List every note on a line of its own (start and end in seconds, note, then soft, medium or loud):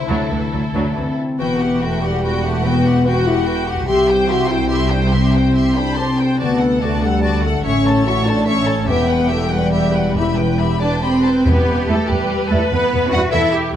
0.00 1.32 D3 soft
0.00 1.37 A3 soft
0.00 1.14 E4 medium
0.06 0.18 D2 soft
0.06 0.30 F#3 soft
0.06 1.61 E4 soft
0.11 0.19 D2 soft
0.11 1.17 A4 soft
0.31 0.40 D2 soft
0.31 0.41 D2 soft
0.31 0.39 E3 soft
0.52 0.62 D2 soft
0.52 0.60 F#3 soft
0.74 0.82 D2 soft
0.74 0.83 D2 soft
0.74 0.95 F#3 soft
0.74 0.85 D4 medium
0.96 1.04 D2 soft
0.96 1.05 D2 soft
0.96 1.04 E3 soft
0.96 1.39 C4 soft
1.39 3.85 E1 soft
1.39 3.84 E2 soft
1.39 2.64 E3 soft
1.39 1.82 B3 medium
1.39 1.59 F#4 soft
1.39 1.59 B4 soft
1.39 1.59 G5 soft
1.60 2.85 E4 soft
1.60 1.82 F#4 soft
1.60 1.82 G4 soft
1.60 1.82 F#5 soft
1.81 2.03 A3 medium
1.81 2.03 F#4 soft
1.81 2.24 G4 soft
1.81 2.03 B4 soft
1.81 2.03 G5 soft
2.02 2.43 G3 medium
2.02 2.23 F#4 soft
2.02 2.23 G4 soft
2.02 2.38 A4 soft
2.02 2.24 F#5 soft
2.23 2.43 F#4 soft
2.23 3.06 G4 soft
2.23 2.43 B4 soft
2.23 2.43 G5 soft
2.44 2.65 A3 medium
2.44 2.64 F#4 soft
2.44 3.68 F#4 soft
2.44 2.66 G4 soft
2.44 2.65 F#5 soft
2.64 3.90 E3 medium
2.64 3.06 B3 medium
2.64 2.86 F#4 soft
2.64 2.85 B4 soft
2.64 2.85 G5 soft
2.84 4.92 E4 soft
2.84 3.05 F#4 soft
2.84 3.06 G4 soft
2.84 3.06 F#5 soft
3.04 3.25 F#4 soft
3.04 3.27 F#4 medium
3.04 3.47 G4 soft
3.04 3.24 B4 soft
3.04 3.26 G5 soft
3.23 3.45 F#4 soft
3.23 3.47 G4 soft
3.23 3.47 F#5 soft
3.27 3.47 E4 medium
3.27 3.62 A4 soft
3.46 3.67 F#4 soft
3.46 4.29 G4 soft
3.46 3.67 B4 soft
3.46 3.67 G5 soft
3.66 3.87 F#4 soft
3.66 3.90 F#4 soft
3.66 3.86 G4 soft
3.66 3.88 F#5 soft
3.88 6.20 C2 medium
3.88 5.12 C3 medium
3.88 4.07 G4 soft
3.88 4.26 G4 medium
3.88 4.07 E5 soft
3.88 4.08 C6 soft
4.08 5.34 C4 soft
4.08 4.30 C5 soft
4.08 4.29 G5 soft
4.08 4.30 G5 soft
4.27 4.49 F#4 medium
4.27 4.50 G4 soft
4.27 4.70 G4 soft
4.27 4.50 E5 soft
4.27 4.51 C6 soft
4.48 4.91 E4 medium
4.48 4.86 A4 soft
4.48 4.71 C5 soft
4.48 4.70 G5 soft
4.69 4.90 G4 soft
4.69 5.56 G4 soft
4.69 4.90 E5 soft
4.69 4.89 C6 soft
4.88 5.01 D4 medium
4.88 5.13 C5 soft
4.88 5.11 G5 soft
4.88 5.12 G5 soft
4.93 6.18 E4 soft
5.10 6.41 C3 soft
5.10 5.74 C4 medium
5.10 5.34 G4 soft
5.10 5.35 E5 soft
5.10 5.33 C6 soft
5.33 6.42 C4 soft
5.33 5.56 C5 soft
5.33 5.55 G5 soft
5.33 5.56 G5 soft
5.55 5.76 G4 soft
5.55 5.98 G4 soft
5.55 5.75 E5 soft
5.55 5.75 C6 soft
5.76 5.97 D4 medium
5.76 6.13 A4 soft
5.76 5.98 C5 soft
5.76 5.97 G5 soft
5.76 5.96 B5 soft
5.96 6.40 C4 soft
5.96 6.42 G4 soft
5.96 6.19 G4 soft
5.96 6.18 A5 soft
5.96 6.18 C6 soft
6.18 6.42 E4 soft
6.18 6.40 C5 soft
6.18 6.39 G5 soft
6.18 6.40 G5 soft
6.39 7.60 D2 soft
6.39 7.61 D2 soft
6.39 7.67 D3 soft
6.39 6.81 B3 medium
6.39 6.59 F#4 soft
6.39 6.59 D5 soft
6.39 6.59 A5 soft
6.59 7.66 D4 soft
6.59 6.82 A4 soft
6.59 6.81 F#5 soft
6.81 6.90 A3 medium
6.81 7.03 F#4 soft
6.81 7.23 A4 soft
6.81 7.02 D5 soft
6.81 7.02 A5 soft
7.02 7.43 G3 medium
7.02 7.23 A4 soft
7.02 7.38 B4 soft
7.02 7.23 F#5 soft
7.21 7.42 F#4 soft
7.21 8.04 A4 soft
7.21 7.42 D5 soft
7.21 7.41 A5 soft
7.43 7.54 A3 medium
7.43 7.66 F#4 soft
7.43 7.65 A4 soft
7.43 7.64 F#5 soft
7.43 7.65 F#5 soft
7.63 8.85 A1 medium
7.63 8.85 A2 soft
7.63 8.89 A2 medium
7.63 8.05 C#4 medium
7.63 7.84 C#5 soft
7.63 7.82 E5 soft
7.63 7.84 C#6 soft
7.85 8.89 A3 soft
7.85 8.06 A4 soft
7.85 8.05 C#5 soft
7.85 8.06 A5 soft
8.05 8.26 F#4 medium
8.05 8.46 A4 soft
8.05 8.26 C#5 soft
8.05 8.25 E5 soft
8.05 8.27 C#6 soft
8.24 8.46 D4 medium
8.24 8.47 A4 soft
8.24 8.61 B4 soft
8.24 8.45 C#5 soft
8.24 8.47 A5 soft
8.45 8.88 C#4 medium
8.45 8.90 A4 soft
8.45 8.66 C#5 soft
8.45 8.65 E5 soft
8.45 8.66 C#6 soft
8.65 9.94 E4 soft
8.65 8.87 A4 soft
8.65 8.86 C#5 soft
8.65 8.87 A5 soft
8.87 11.26 E1 medium
8.87 10.81 E2 medium
8.87 10.16 E2 medium
8.87 9.30 B3 medium
8.87 9.07 G4 medium
8.87 9.06 E5 medium
8.87 9.07 G5 medium
9.08 12.98 G3 soft
9.08 9.29 B4 soft
9.08 9.30 F#5 soft
9.08 9.29 G5 soft
9.28 9.51 A3 medium
9.28 9.71 F#4 soft
9.28 9.50 G4 soft
9.28 9.50 E5 soft
9.28 9.50 G5 soft
9.49 10.15 G3 medium
9.49 9.88 G4 soft
9.49 9.72 B4 soft
9.49 9.73 F#5 soft
9.49 9.71 G5 soft
9.72 10.18 F#4 soft
9.72 9.93 G4 soft
9.72 9.93 E5 soft
9.72 9.93 G5 soft
9.93 11.23 E4 soft
9.93 10.17 B4 soft
9.93 10.17 F#5 soft
9.93 10.16 G5 soft
10.15 10.77 E2 medium
10.15 11.45 E2 soft
10.15 10.81 E4 medium
10.15 10.37 G4 soft
10.15 10.36 E5 soft
10.15 10.38 B5 soft
10.36 10.60 B4 soft
10.36 10.59 G5 soft
10.36 10.60 G5 soft
10.58 10.82 G4 soft
10.58 11.02 G4 soft
10.58 10.81 E5 soft
10.58 10.81 B5 soft
10.80 11.01 D4 medium
10.80 11.18 A4 soft
10.80 11.03 B4 soft
10.80 10.88 D5 soft
10.80 11.01 D5 soft
10.80 11.02 G5 soft
10.80 11.01 A5 soft
11.03 11.45 C4 soft
11.03 11.23 G4 soft
11.03 11.86 G4 soft
11.03 11.45 C5 soft
11.03 11.24 G5 soft
11.03 11.23 B5 soft
11.23 13.76 E4 soft
11.23 11.46 B4 soft
11.23 11.46 G5 soft
11.23 11.31 A5 soft
11.45 12.70 E2 soft
11.45 12.05 E2 medium
11.45 11.54 E2 medium
11.45 11.88 B3 medium
11.45 12.05 G4 medium
11.45 11.87 B4 medium
11.45 11.88 B4 medium
11.67 11.75 E2 soft
11.67 12.49 B3 soft
11.87 11.96 E2 soft
11.87 11.96 G3 soft
11.87 11.96 A3 medium
11.87 11.95 E4 soft
11.87 12.29 G4 soft
11.87 12.08 A4 medium
11.87 12.10 A4 medium
12.07 12.17 E2 medium
12.07 12.49 G3 medium
12.07 12.49 G4 medium
12.07 12.50 G4 soft
12.07 13.33 B4 medium
12.07 13.32 B4 soft
12.30 13.11 G4 soft
12.49 12.59 E2 soft
12.49 12.57 G3 soft
12.49 12.58 A3 medium
12.49 13.73 B3 soft
12.49 12.57 E4 soft
12.49 12.70 A4 soft
12.69 12.79 E2 medium
12.69 13.76 E2 soft
12.69 13.12 B3 medium
12.69 13.11 B4 medium
12.92 13.01 E2 soft
12.92 13.76 B2 soft
13.12 13.20 E2 soft
13.12 13.20 G3 medium
13.12 13.20 E4 medium
13.12 13.33 F#4 medium
13.12 13.53 G4 soft
13.12 13.20 F#5 medium
13.12 13.21 F#5 medium
13.31 13.41 E2 medium
13.31 13.53 E4 medium
13.31 13.53 A4 medium
13.31 13.76 B4 soft
13.31 13.52 E5 medium
13.31 13.40 E5 medium
13.54 13.74 G4 medium
13.54 13.76 G4 soft